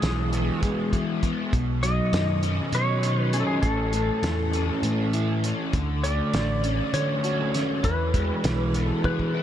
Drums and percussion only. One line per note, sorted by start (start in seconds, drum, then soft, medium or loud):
0.02 snare medium
0.02 closed hi-hat medium
0.33 closed hi-hat soft
0.63 kick medium
0.63 closed hi-hat medium
0.93 kick medium
0.93 closed hi-hat soft
1.23 kick medium
1.23 closed hi-hat medium
1.53 kick medium
1.53 closed hi-hat medium
1.83 closed hi-hat medium
2.13 snare medium
2.13 closed hi-hat medium
2.43 closed hi-hat medium
2.73 closed hi-hat medium
3.03 closed hi-hat medium
3.33 closed hi-hat medium
3.63 kick medium
3.63 closed hi-hat medium
3.93 closed hi-hat medium
4.23 snare medium
4.23 closed hi-hat medium
4.53 closed hi-hat soft
4.83 closed hi-hat medium
5.13 closed hi-hat soft
5.44 closed hi-hat medium
5.73 kick medium
5.73 closed hi-hat medium
6.04 closed hi-hat medium
6.34 snare medium
6.34 closed hi-hat medium
6.64 closed hi-hat medium
6.94 closed hi-hat medium
7.24 closed hi-hat medium
7.54 snare soft
7.54 closed hi-hat medium
7.84 kick medium
7.84 closed hi-hat medium
8.14 kick medium
8.14 closed hi-hat medium
8.44 snare medium
8.44 closed hi-hat medium
8.74 closed hi-hat medium
9.04 kick medium
9.04 high tom soft
9.19 kick soft